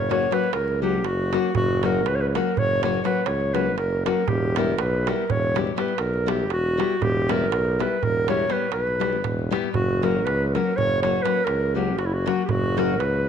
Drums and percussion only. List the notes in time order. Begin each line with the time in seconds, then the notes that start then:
0.11 darbuka tek
0.22 darbuka tek
0.32 darbuka tek
0.43 darbuka tek
0.53 darbuka tek
0.68 darbuka tek
0.94 darbuka tek
1.04 darbuka tek
1.33 darbuka tek
1.44 darbuka tek
1.55 darbuka dum
1.69 darbuka tek
1.83 darbuka tek
1.94 darbuka tek
2.06 darbuka tek
2.21 darbuka tek
2.35 darbuka tek
2.57 darbuka dum
2.71 darbuka tek
2.83 darbuka tek
2.94 darbuka tek
3.05 darbuka tek
3.15 darbuka tek
3.26 darbuka tek
3.40 darbuka tek
3.55 darbuka tek
3.66 darbuka tek
3.78 darbuka tek
4.06 darbuka tek
4.17 darbuka tek
4.28 darbuka dum
4.42 darbuka tek
4.56 darbuka tek
4.68 darbuka tek
4.78 darbuka tek
4.93 darbuka tek
5.07 darbuka tek
5.30 darbuka dum
5.43 darbuka tek
5.56 darbuka tek
5.67 darbuka tek
5.78 darbuka tek
5.88 darbuka tek
5.98 darbuka tek
6.13 darbuka tek
6.28 darbuka tek
6.39 darbuka tek
6.50 darbuka tek
6.80 darbuka tek
6.90 darbuka tek
7.02 darbuka dum
7.15 darbuka tek
7.29 darbuka tek
7.41 darbuka tek
7.52 darbuka tek
7.66 darbuka tek
7.80 darbuka tek
8.03 darbuka dum
8.16 darbuka tek
8.28 darbuka tek
8.39 darbuka tek
8.50 darbuka tek
8.61 darbuka tek
8.72 darbuka tek
8.87 darbuka tek
9.01 darbuka tek
9.12 darbuka tek
9.24 darbuka tek, darbuka dum
9.39 darbuka tek
9.53 darbuka tek
9.64 darbuka tek
9.74 darbuka dum
9.89 darbuka tek
10.03 darbuka tek
10.27 darbuka tek
10.41 darbuka tek
10.55 darbuka tek
10.78 darbuka dum
10.91 darbuka tek
11.03 darbuka tek
11.15 darbuka tek
11.25 darbuka tek
11.37 darbuka tek
11.47 darbuka tek
11.62 darbuka tek
11.87 darbuka tek
11.99 darbuka tek
12.27 darbuka tek
12.38 darbuka tek
12.49 darbuka dum
12.64 darbuka tek
12.78 darbuka tek
12.89 darbuka tek
13.00 darbuka tek
13.14 darbuka tek